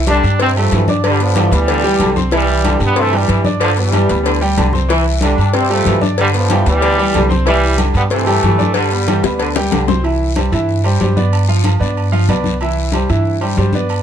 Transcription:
Already playing: C2
0.07 D3 G3 D4 G4 G5, cowbell, high conga, low agogo, short guiro
0.23 G2, low agogo, short guiro
0.39 C3 G3 C4 C5 C6, cowbell, high conga, long guiro
0.56 F3 G3 A3 G4 G5, high conga, low agogo
0.72 G2 E3, cowbell, high conga, low timbale, low agogo, short guiro
0.88 D4 D5 D6, high conga, short guiro
1.04 D3 G3, cowbell, high conga, low agogo, long guiro
1.20 D3 F3 B3 B4 B5, cowbell, high conga
1.35 E3 G3 G4 G5, cowbell, high conga, low agogo, short guiro
1.51 D2 E3 B3 B4 B5, cowbell, short guiro
1.56 G3
1.68 D3, cowbell, high conga, low agogo, long guiro
1.84 G3 G4 G5, high conga, low agogo
2.00 C2 D3, cowbell, high conga, low timbale, low agogo, short guiro
2.16 C4 C5 C6, high conga, short guiro
2.31 E3 G3 E4 E5, cowbell, low agogo, long guiro
2.49 high conga
2.64 D3 G3 G4 G5, cowbell, high conga, low agogo, short guiro
2.80 G2 G3, high conga, low agogo, short guiro
2.85 B3
2.96 C3 E3 C4 C5 C6, cowbell, high conga, long guiro
3.00 A3
3.12 E3 G3 G4 G5, high conga, low agogo
3.17 G3
3.28 G2 E3, cowbell, high conga, low agogo, short guiro
3.45 D4 D5 D6, high conga, short guiro
3.60 D3 F3, cowbell, high conga, low agogo, long guiro
3.77 E3 G3 B3 B4 B5, cowbell, high conga
3.92 E3 G3 G4 G5, cowbell, high conga, low agogo, short guiro
4.09 D2 B3 B4 B5, cowbell, high conga, short guiro
4.23 D3, cowbell, high conga, low agogo, long guiro
4.41 G3 G4 G5, high conga, low agogo
4.57 C2 D3, cowbell, high conga, low timbale, low agogo, short guiro
4.73 C4 C5 C6, high conga, short guiro
4.89 E3 E4 E5, cowbell, high conga, low agogo, long guiro
5.05 high conga
5.21 D3 G3 D4 G4 G5, cowbell, high conga, low agogo, short guiro
5.38 G2, high conga, low agogo, short guiro
5.53 C3 G3 C4 C5 C6, cowbell, high conga, long guiro
5.70 F3 G3 A3 G4 G5, high conga, low agogo
5.85 G2 E3, cowbell, high conga, low timbale, low agogo, short guiro
6.01 D4 D5 D6, high conga, short guiro
6.18 D3 G3, cowbell, high conga, low agogo, long guiro
6.34 D3 F3 B3 B4 B5, cowbell, high conga
6.50 E3 G3 G4 G5, cowbell, high conga, low agogo, short guiro
6.66 D2 E3 G3 B3 B4 B5, cowbell, high conga, short guiro
6.80 D3, cowbell, high conga, low agogo, long guiro
6.98 G3 G4 G5, high conga, low agogo
7.13 C2 D3, cowbell, high conga, low timbale, low agogo, short guiro
7.29 C4 C5 C6, high conga, short guiro
7.45 E3 G3 E4 E5, cowbell, low agogo, long guiro
7.63 high conga
7.77 D3 G3 G4 G5, cowbell, high conga, low agogo, short guiro
7.94 G2 G3 B3, high conga, low agogo, short guiro
8.10 C3 E3 A3 C4 C5 C6, cowbell, high conga, long guiro
8.26 G3 G4 G5, high conga, low agogo
8.43 G2 E3, cowbell, high conga, low timbale, low agogo, short guiro
8.59 D4 D5 D6, high conga, short guiro
8.74 D3 G3, cowbell, high conga, low agogo, long guiro
8.91 B3 B4 B5, cowbell, high conga
9.07 E3 G3 G4 G5, cowbell, high conga, low agogo, short guiro
9.23 D2 B3 B4 B5, cowbell, high bongo, short guiro
9.38 D3, cowbell, high conga, low agogo, long guiro
9.56 G3 G4 G5, low bongo, high conga, high timbale, low agogo
9.71 C2 D3, cowbell, low bongo, high conga, low agogo, short guiro
9.88 C4 C5 C6, low bongo, high conga, low timbale, short guiro
10.04 E3 E4 E5, high conga, low agogo, long guiro
10.22 high conga
10.36 G3 G4 C5, high conga, low agogo, short guiro
10.52 G2 E3 E4 E5, high conga, low agogo, short guiro
10.69 high conga, long guiro
10.84 G3 G4 C5, high conga, low agogo
11.00 G2 G3 G4 C5, high conga, low timbale, low agogo, short guiro
11.16 B3 B4 D5, high conga, short guiro
11.33 high conga, low agogo, long guiro
11.48 F3 F4 F5, high conga
11.64 high conga, low agogo, short guiro
11.80 G2 B3 B4 D5, high conga, short guiro
11.96 high conga, low agogo, long guiro
12.12 F3 F4 F5, high conga, low agogo
12.29 C2 B3 B4 D5, high conga, low timbale, low agogo, short guiro
12.44 high conga, short guiro
12.60 E3 E4 E5, high conga, low agogo, long guiro
12.77 high conga
12.92 G3 G4 C5, high conga, low agogo, short guiro
13.08 G2 E3 E4 E5, high conga, low agogo, short guiro
13.25 high conga, long guiro
13.41 G3 G4 C5, high conga, low agogo
13.57 G2 G3 G4 C5, high conga, low timbale, low agogo, short guiro
13.73 B3 B4 D5, high conga, short guiro
13.89 high conga, low agogo, long guiro

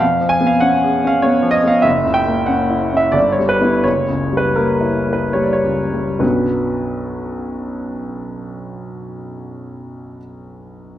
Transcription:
0.00 F2 F5
0.21 F3
0.29 G#5
0.41 B3
0.47 F5
0.60 C#4 F#5
0.84 G#4
1.04 C#4 F5
1.22 B3 C#5
1.42 F3
1.51 D#5
1.64 B3 F5
1.82 F#1 E5
2.04 C#2
2.14 G5
2.26 A#3
2.46 C#4 F#5
2.70 E4
2.93 C#4
2.97 E5
3.12 G1 D5
3.32 C#5
3.40 G3
3.49 B4
3.61 B3 E4
3.84 F#1 C#5
4.08 C#2
4.33 G3
4.37 B4
4.55 A#3 A#4
4.81 E4
5.07 A#3
5.13 B4
5.33 G3 C#5
5.43 D5
5.53 C#5
5.64 C#2
5.94 G3
6.19 B1 F#2 F#3 B3 D4 F#4 B4

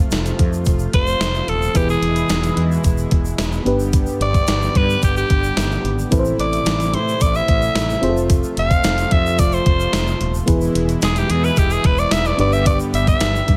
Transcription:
Already playing: C3 F3 A3 C4 F4 A4 C5
0.11 F1, snare, closed hi-hat, shaker
0.26 closed hi-hat, shaker
0.39 F2, kick, closed hi-hat
0.53 shaker
0.65 F1, kick, closed hi-hat, shaker
0.79 shaker
0.93 F1 C5, kick, closed hi-hat
1.07 shaker
1.20 F1, snare, closed hi-hat, shaker
1.35 shaker
1.48 D#1 A4, closed hi-hat
1.62 shaker
1.74 E1 B2 E3 G#3 B3 E4 G4 G#4 B4, kick, closed hi-hat, shaker
1.89 G#4, shaker
2.02 E1, closed hi-hat
2.16 closed hi-hat, shaker
2.29 E1, snare, closed hi-hat, shaker
2.43 closed hi-hat, shaker
2.57 E2, closed hi-hat
2.72 shaker
2.84 E1, kick, closed hi-hat, shaker
2.98 shaker
3.11 E1, kick, closed hi-hat
3.25 shaker
3.38 E1, snare, closed hi-hat, shaker
3.52 shaker
3.65 G1 G2 D3 G3 B3 D4 G4 B4, closed hi-hat
3.80 shaker
3.93 kick, closed hi-hat, shaker
4.07 shaker
4.20 G1 D5, closed hi-hat
4.34 kick, closed hi-hat, shaker
4.47 G1, snare, closed hi-hat, shaker
4.62 shaker
4.75 G2 B4, kick, closed hi-hat
4.90 shaker
5.02 G1 G4, kick, closed hi-hat, shaker
5.17 G4, shaker
5.30 G1, kick, closed hi-hat
5.44 shaker
5.57 G1, snare, closed hi-hat, shaker
5.71 shaker
5.84 G#1, closed hi-hat
5.99 shaker
6.10 A1 A2 C3 E3 A3 C4 E4 A4 B4, kick, closed hi-hat, shaker
6.19 C5
6.25 shaker
6.39 A1 D5, closed hi-hat
6.53 closed hi-hat, shaker
6.66 A1, snare, closed hi-hat, shaker
6.80 closed hi-hat, shaker
6.93 A2 C5, closed hi-hat
7.08 shaker
7.21 A1 D5, kick, closed hi-hat, shaker
7.35 E5, shaker
7.48 A1, kick, closed hi-hat
7.62 shaker
7.75 A1, snare, closed hi-hat, shaker
7.90 shaker
8.01 F1 F3 C4 F4 G#4 C5, closed hi-hat
8.09 A4
8.17 shaker
8.30 kick, closed hi-hat, shaker
8.44 shaker
8.57 F1 F5, closed hi-hat
8.71 kick, closed hi-hat, shaker
8.84 F1, snare, closed hi-hat, shaker
8.98 closed hi-hat, shaker
9.11 F2 E5, kick, closed hi-hat
9.26 shaker
9.39 F1 D5, kick, closed hi-hat, shaker
9.52 C5, shaker
9.66 F1, kick, closed hi-hat
9.80 shaker
9.93 F1, snare, closed hi-hat, shaker
10.07 shaker
10.21 D#1, closed hi-hat
10.34 shaker
10.46 E1 B2 E3 G#3 B3 E4 G#4 B4, kick, closed hi-hat, shaker
10.61 shaker
10.75 E1, closed hi-hat
10.89 closed hi-hat, shaker
11.02 E1 G#4, snare, closed hi-hat, shaker
11.16 G4, closed hi-hat, shaker
11.30 E2 G#4, closed hi-hat
11.44 B4, shaker
11.56 E1 G4, kick, closed hi-hat, shaker
11.70 G#4, shaker
11.84 E1 B4, kick, closed hi-hat
11.98 D5, shaker
12.11 E1 E5, snare, closed hi-hat, shaker
12.25 D5, shaker
12.38 G1 G2 D3 G3 B3 D4 G4 B4 D5, closed hi-hat
12.53 E5, shaker
12.66 D5, kick, closed hi-hat, shaker
12.80 shaker
12.93 G1 E5, closed hi-hat, shaker
13.07 E5, kick, closed hi-hat, shaker
13.21 G1, snare, closed hi-hat, shaker
13.36 shaker
13.48 G2, kick, closed hi-hat

